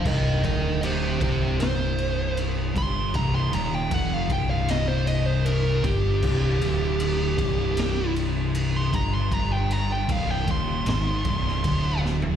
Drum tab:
CC |x---------------|----------------|x---------------|----------------|
RD |--x-x-x-x-x-x-x-|x-x-x-x-x-x-x-x-|--x-x-x-x-x-x-x-|x-x-x-x-x-x-x---|
SD |--------o-------|--------o-------|--------o-------|--------o--o--o-|
FT |----------------|----------------|----------------|---------------o|
BD |o-o---o-------o-|o---o-o-------o-|o-----o-------o-|o---o-o---o-o---|